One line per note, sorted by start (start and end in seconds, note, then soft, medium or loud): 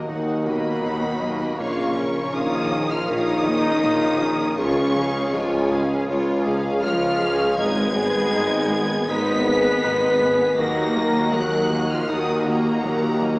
0.00 1.60 D#1 medium
0.00 1.58 F#3 medium
0.00 1.54 D#4 medium
0.00 0.10 D#5 medium
0.00 1.54 D#5 medium
0.09 0.75 D#2 medium
0.09 0.32 D#2 medium
0.09 0.44 F#3 medium
0.09 0.31 D#4 medium
0.09 0.44 D#4 medium
0.09 0.45 F#4 medium
0.09 0.45 F#5 medium
0.45 1.54 B2 medium
0.45 1.55 B2 medium
0.45 0.69 D#3 medium
0.45 0.68 A#3 medium
0.45 0.84 A#3 medium
0.45 0.84 F#4 medium
0.45 0.85 A#4 medium
0.45 0.85 D#5 medium
0.45 1.55 B5 loud
0.83 1.50 D#2 medium
0.83 1.07 D#2 medium
0.83 1.06 D#3 medium
0.83 1.21 F#3 medium
0.83 1.21 D#4 medium
0.83 1.22 F#4 medium
0.83 1.22 F#5 medium
1.21 1.45 D#2 medium
1.21 1.44 F#3 medium
1.21 1.58 A#3 medium
1.21 1.59 F#4 medium
1.21 1.59 A#4 medium
1.21 1.59 D#5 medium
1.59 2.16 A#1 medium
1.59 4.60 A#1 medium
1.59 2.25 A#1 medium
1.59 1.82 A#2 loud
1.59 2.34 C#3 medium
1.59 7.59 F3 medium
1.59 1.81 A#3 loud
1.59 1.94 A#3 medium
1.59 2.32 C#4 medium
1.59 4.59 F4 medium
1.59 1.94 F4 medium
1.59 4.59 A#4 medium
1.59 1.95 C#5 medium
1.59 1.94 F5 medium
1.59 2.35 C#6 loud
1.96 2.19 A#2 medium
1.96 2.19 C#4 medium
1.96 2.34 C#4 medium
1.96 2.35 A#4 medium
1.96 2.34 C#5 medium
2.33 3.00 A#1 medium
2.33 3.01 A#1 medium
2.33 2.57 A#2 medium
2.33 2.90 D#3 medium
2.33 2.72 A#3 medium
2.33 2.56 C#4 medium
2.33 2.91 D#4 loud
2.33 2.71 F4 medium
2.33 2.72 C#5 medium
2.33 2.72 F5 medium
2.33 2.90 D#6 loud
2.71 2.95 A#2 loud
2.71 2.94 A#3 loud
2.71 3.09 C#4 medium
2.71 3.10 A#4 medium
2.71 3.10 C#5 medium
2.90 3.09 F3 medium
2.90 3.09 F4 medium
2.90 3.10 F6 loud
3.08 3.75 A#1 medium
3.08 3.76 A#1 medium
3.08 3.32 A#2 medium
3.08 4.56 D#3 loud
3.08 3.44 A#3 medium
3.08 4.59 D#4 loud
3.08 3.44 F4 medium
3.08 3.31 A#4 medium
3.08 3.45 C#5 medium
3.08 3.44 F5 medium
3.08 4.59 D#6 loud
3.46 3.69 A#3 medium
3.46 3.84 C#4 medium
3.46 3.68 F4 medium
3.46 3.84 A#4 medium
3.46 3.83 C#5 medium
3.83 4.50 A#1 medium
3.83 4.07 A#2 loud
3.83 4.06 A#3 medium
3.83 4.22 A#3 medium
3.83 4.22 F4 medium
3.83 4.20 C#5 medium
3.83 4.21 F5 medium
4.20 4.45 A#2 medium
4.20 4.43 C#4 medium
4.20 4.59 C#4 medium
4.20 4.59 A#4 medium
4.20 4.56 C#5 medium
4.57 4.81 C#2 loud
4.57 7.60 C#2 medium
4.57 5.25 C#2 loud
4.57 5.25 C#2 medium
4.57 5.32 C#3 loud
4.57 4.81 C#3 loud
4.57 7.58 G#3 medium
4.57 4.94 G#3 medium
4.57 5.32 C#4 loud
4.57 4.93 F4 medium
4.57 4.94 F4 medium
4.57 10.58 G#4 medium
4.57 4.93 C#5 medium
4.57 7.58 C#5 medium
4.57 5.33 C#6 loud
4.95 5.19 C#2 medium
4.95 5.19 F3 medium
4.95 5.34 C#4 medium
4.95 5.33 G#4 medium
4.95 5.35 G#4 medium
4.95 5.33 F5 medium
5.32 5.56 C#2 medium
5.32 6.00 C#2 medium
5.32 6.00 C#2 loud
5.32 6.09 G#2 medium
5.32 5.56 F3 medium
5.32 6.07 G#3 medium
5.32 5.72 G#3 medium
5.32 5.71 F4 medium
5.32 5.72 C#5 medium
5.32 6.09 G#5 loud
5.71 5.94 C#2 loud
5.71 5.93 C#3 medium
5.71 6.09 C#4 medium
5.71 6.09 G#4 medium
5.71 6.09 F5 medium
6.08 6.75 C#2 loud
6.08 6.75 C#2 medium
6.08 6.32 C#2 medium
6.08 6.44 G#3 medium
6.08 6.31 C#4 medium
6.08 6.43 F4 medium
6.08 6.44 F4 medium
6.08 6.44 C#5 medium
6.46 6.69 C#3 medium
6.46 6.68 G#3 medium
6.46 6.84 C#4 medium
6.46 6.84 G#4 medium
6.46 6.84 F5 medium
6.83 7.50 C#2 medium
6.83 7.06 C#2 medium
6.83 7.50 C#2 loud
6.83 7.06 C#3 medium
6.83 7.55 F3 loud
6.83 7.21 G#3 medium
6.83 7.55 F4 loud
6.83 7.21 F4 medium
6.83 7.21 C#5 medium
6.83 7.55 F6 loud
7.20 7.44 C#2 medium
7.20 7.44 F3 medium
7.20 7.59 C#4 medium
7.20 7.58 G#4 medium
7.20 7.59 G#4 medium
7.20 7.58 F5 medium
7.57 8.25 G#1 loud
7.57 10.60 G#1 medium
7.57 7.81 G#2 loud
7.57 13.39 D#3 medium
7.57 9.09 G#3 loud
7.57 7.81 G#3 loud
7.57 7.94 G#3 medium
7.57 10.58 B3 medium
7.57 7.94 D#4 medium
7.57 9.05 G#4 loud
7.57 7.94 B4 medium
7.57 10.58 D#5 medium
7.57 7.93 D#5 medium
7.57 9.09 G#6 loud
7.95 8.18 G#2 medium
7.95 8.19 B3 medium
7.95 8.34 B3 medium
7.95 8.34 G#4 medium
7.95 8.33 B4 medium
8.33 8.91 G#1 loud
8.33 9.00 G#1 loud
8.33 8.56 G#2 medium
8.33 8.71 G#3 medium
8.33 8.56 B3 medium
8.33 8.71 D#4 medium
8.33 8.69 B4 medium
8.33 8.72 D#5 medium
8.71 8.94 G#2 loud
8.71 8.94 G#3 loud
8.71 9.09 B3 medium
8.71 9.09 G#4 medium
8.71 9.08 B4 medium
9.08 9.75 G#1 loud
9.08 9.31 G#2 medium
9.08 9.44 G#3 medium
9.08 10.59 B3 loud
9.08 9.44 D#4 medium
9.08 9.32 G#4 medium
9.08 10.56 B4 loud
9.08 9.44 B4 medium
9.08 9.44 D#5 medium
9.08 10.59 B6 loud
9.46 9.69 G#3 medium
9.46 9.84 B3 medium
9.46 9.69 D#4 medium
9.46 9.85 G#4 medium
9.46 9.84 B4 medium
9.83 10.50 G#1 medium
9.83 10.51 G#1 medium
9.83 10.07 G#2 loud
9.83 10.21 G#3 medium
9.83 10.07 G#3 loud
9.83 10.21 D#4 medium
9.83 10.22 B4 medium
9.83 10.22 D#5 medium
10.21 10.44 G#2 medium
10.21 10.59 B3 medium
10.21 10.44 B3 medium
10.21 10.60 G#4 medium
10.21 10.60 B4 medium
10.58 13.39 D#1 medium
10.58 11.25 D#2 loud
10.58 10.82 D#2 loud
10.58 11.26 D#2 medium
10.58 10.81 D#3 loud
10.58 10.93 F#3 medium
10.58 13.39 A#3 medium
10.58 11.32 A#3 loud
10.58 10.93 D#4 medium
10.58 13.39 F#4 medium
10.58 13.39 A#4 medium
10.58 11.34 A#4 loud
10.58 10.95 A#4 medium
10.58 10.95 F#5 medium
10.58 11.33 A#6 loud
10.96 11.20 D#2 medium
10.96 11.19 F#3 medium
10.96 11.34 A#3 medium
10.96 11.34 F#4 medium
10.96 11.34 D#5 medium
11.33 12.00 D#2 medium
11.33 11.57 D#2 medium
11.33 12.01 D#2 loud
11.33 11.90 F#3 loud
11.33 11.56 F#3 medium
11.33 11.72 F#3 medium
11.33 11.72 D#4 medium
11.33 11.90 F#4 loud
11.33 11.72 A#4 medium
11.33 11.71 F#5 medium
11.33 11.90 F#6 loud
11.71 11.94 D#2 loud
11.71 11.94 D#3 loud
11.71 12.09 A#3 medium
11.71 12.09 F#4 medium
11.71 12.10 F#4 medium
11.71 12.10 D#5 medium
11.90 12.09 F3 medium
11.90 12.09 F4 medium
11.90 12.09 F6 loud
12.08 12.32 D#2 medium
12.08 12.75 D#2 medium
12.08 12.47 D#3 medium
12.08 12.44 F#3 medium
12.08 12.46 D#4 loud
12.08 12.44 D#4 medium
12.08 12.32 D#4 medium
12.08 12.44 A#4 medium
12.08 12.44 F#5 medium
12.08 12.46 D#6 loud
12.46 13.39 A#2 medium
12.46 12.69 D#3 medium
12.46 13.39 A#3 medium
12.46 12.69 A#3 medium
12.46 12.84 A#3 medium
12.46 12.84 F#4 medium
12.46 12.85 F#4 medium
12.46 12.85 D#5 medium
12.46 13.39 A#5 loud
12.84 13.39 D#2 medium
12.84 13.07 D#2 loud
12.84 13.39 D#2 medium
12.84 13.06 D#3 loud
12.84 13.22 F#3 medium
12.84 13.22 D#4 medium
12.84 13.22 A#4 medium
12.84 13.22 F#5 medium
13.21 13.39 D#2 medium
13.21 13.39 F#3 medium
13.21 13.39 A#3 medium
13.21 13.39 F#4 medium
13.21 13.39 D#5 medium